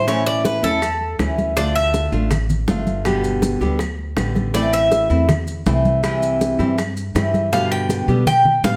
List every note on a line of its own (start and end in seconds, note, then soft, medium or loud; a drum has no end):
0.00 0.57 A2 medium
0.07 0.62 E3 medium
0.07 0.64 A3 medium
0.07 0.63 C#4 medium
0.07 0.62 E4 medium
0.07 0.26 C#5 medium
0.07 high bongo medium
0.07 high conga soft
0.07 claves medium
0.07 maracas medium
0.26 0.44 D5 loud
0.26 high bongo soft
0.26 high conga soft
0.45 0.63 B4 medium
0.45 high bongo medium
0.45 high conga loud
0.45 maracas medium
0.63 1.15 E2 medium
0.63 0.81 A3 medium
0.63 0.81 C#4 medium
0.63 0.81 E4 medium
0.63 1.16 A4 loud
0.63 high bongo soft
0.63 high conga soft
0.63 maracas soft
0.82 muted nylon-string guitar stroke medium
0.82 high bongo medium
0.82 high conga soft
0.82 claves medium
0.82 maracas medium
1.01 high conga soft
1.19 2.07 D2 medium
1.19 1.55 E3 soft
1.19 1.56 A3 soft
1.19 1.56 C#4 medium
1.19 1.56 E4 soft
1.19 high bongo medium
1.19 low bongo medium
1.19 high conga soft
1.19 claves medium
1.19 maracas medium
1.38 high bongo soft
1.38 high conga medium
1.38 maracas soft
1.57 2.12 D3 medium
1.57 2.12 A3 medium
1.57 2.13 D4 medium
1.57 2.11 F4 medium
1.57 1.75 D5 medium
1.57 high bongo medium
1.57 high conga soft
1.57 maracas medium
1.75 2.10 E5 loud
1.75 high conga soft
1.75 claves medium
1.94 high bongo medium
1.94 high conga medium
1.94 maracas medium
2.12 2.64 A1 medium
2.12 2.31 A3 medium
2.12 2.31 D4 medium
2.12 2.30 F4 medium
2.12 high conga soft
2.12 maracas soft
2.31 muted nylon-string guitar stroke medium
2.31 high bongo medium
2.31 high conga soft
2.31 low conga medium
2.31 claves medium
2.31 maracas medium
2.50 high conga soft
2.50 low conga medium
2.50 maracas medium
2.68 3.55 G1 medium
2.68 3.04 D3 soft
2.68 3.05 A3 medium
2.68 3.05 D4 medium
2.68 3.05 F4 medium
2.68 high bongo medium
2.68 low bongo medium
2.68 high conga medium
2.68 maracas medium
2.87 high conga medium
2.87 maracas soft
3.05 3.61 B2 medium
3.05 3.61 D3 medium
3.05 3.61 G3 medium
3.05 3.61 B3 medium
3.05 3.60 G4 medium
3.05 high bongo medium
3.05 high conga soft
3.05 claves medium
3.05 maracas medium
3.24 high bongo soft
3.24 high conga soft
3.24 maracas medium
3.42 high bongo medium
3.42 high conga loud
3.42 maracas medium
3.61 4.13 D2 medium
3.61 3.79 D3 medium
3.61 3.79 G3 medium
3.61 3.79 B3 medium
3.61 3.79 G4 medium
3.61 high bongo soft
3.61 high conga soft
3.61 maracas soft
3.79 muted nylon-string guitar stroke medium
3.79 high bongo medium
3.79 high conga soft
3.79 claves medium
3.79 maracas medium
3.99 high conga soft
4.17 5.05 A1 medium
4.17 4.54 D3 soft
4.17 4.54 G3 soft
4.17 4.54 B3 medium
4.17 4.54 G4 medium
4.17 high bongo medium
4.17 low bongo medium
4.17 high conga soft
4.17 claves medium
4.17 maracas medium
4.35 high bongo soft
4.35 high conga medium
4.35 maracas soft
4.54 5.28 E3 medium
4.54 5.10 A3 medium
4.54 5.10 C4 medium
4.54 5.09 E4 medium
4.54 4.73 D5 medium
4.54 high bongo medium
4.54 high conga soft
4.54 maracas medium
4.73 5.08 E5 medium
4.73 high conga soft
4.73 claves medium
4.73 maracas medium
4.92 high bongo medium
4.92 high conga medium
4.92 maracas medium
5.10 5.62 E2 medium
5.10 5.28 A3 medium
5.10 5.28 C4 medium
5.10 5.28 E4 medium
5.10 high conga soft
5.10 maracas soft
5.29 muted nylon-string guitar stroke medium
5.29 high bongo medium
5.29 high conga soft
5.29 low conga medium
5.29 claves medium
5.29 maracas medium
5.47 high conga soft
5.47 maracas medium
5.66 6.54 C2 medium
5.66 6.02 E3 medium
5.66 6.03 A3 medium
5.66 6.03 C4 soft
5.66 6.03 E4 medium
5.66 high bongo medium
5.66 low bongo medium
5.66 high conga medium
5.66 maracas medium
5.85 high conga medium
5.85 maracas soft
6.03 6.58 C3 medium
6.03 6.59 E3 medium
6.03 6.59 G3 medium
6.03 6.58 C4 medium
6.03 6.58 E4 medium
6.03 high bongo medium
6.03 claves medium
6.03 maracas medium
6.22 high bongo soft
6.22 high conga soft
6.22 maracas medium
6.41 high bongo medium
6.41 high conga medium
6.41 maracas medium
6.59 7.11 G2 medium
6.59 6.77 E3 soft
6.59 6.77 G3 medium
6.59 6.77 C4 medium
6.59 6.77 E4 medium
6.59 high bongo soft
6.59 high conga soft
6.59 maracas soft
6.78 muted nylon-string guitar stroke medium
6.78 high bongo medium
6.78 high conga soft
6.78 claves medium
6.78 maracas medium
6.97 high conga soft
6.97 maracas medium
7.15 8.02 G2 medium
7.15 7.52 E3 medium
7.15 7.51 G3 medium
7.15 7.52 C4 medium
7.15 7.52 E4 medium
7.15 high bongo medium
7.15 low bongo medium
7.15 high conga soft
7.15 claves medium
7.15 maracas medium
7.34 high bongo soft
7.34 high conga medium
7.34 maracas soft
7.52 8.08 B2 medium
7.52 8.08 D3 medium
7.52 8.09 G3 medium
7.52 8.08 B3 medium
7.52 8.08 G4 medium
7.52 7.71 F5 medium
7.52 high bongo medium
7.52 high conga soft
7.52 maracas medium
7.71 8.06 G5 medium
7.71 high conga soft
7.71 claves medium
7.89 high bongo medium
7.89 high conga medium
7.89 maracas medium
8.08 8.60 B2 loud
8.08 8.26 D3 medium
8.08 8.26 G3 medium
8.08 8.26 B3 medium
8.08 8.26 G4 medium
8.08 high conga soft
8.08 maracas soft
8.27 8.62 G5 loud
8.27 muted nylon-string guitar stroke medium
8.27 high bongo medium
8.27 high conga soft
8.27 low conga medium
8.27 claves medium
8.27 maracas medium
8.45 high conga soft
8.45 low conga medium
8.64 8.77 A2 medium
8.64 8.77 D3 medium
8.64 8.77 G3 soft
8.64 8.77 B3 medium
8.64 8.77 G4 medium
8.64 8.77 F5 medium
8.64 high bongo medium
8.64 low bongo medium
8.64 high conga medium
8.64 maracas medium